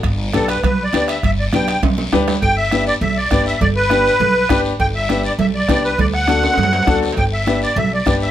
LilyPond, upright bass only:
\new Staff \with { instrumentName = "Upright bass" } { \clef bass \time 4/4 \key g \major \tempo 4 = 202 g,,4 b,,4 b,,4 d,4 | g,,4 b,,4 b,,4 d,4 | g,,2 b,,4 g,,4 | g,,2 b,,4 g,,4 |
g,,2 b,,4 c,4 | d,2 fis,4 d,4 | g,,2 b,,4 g,,4 | }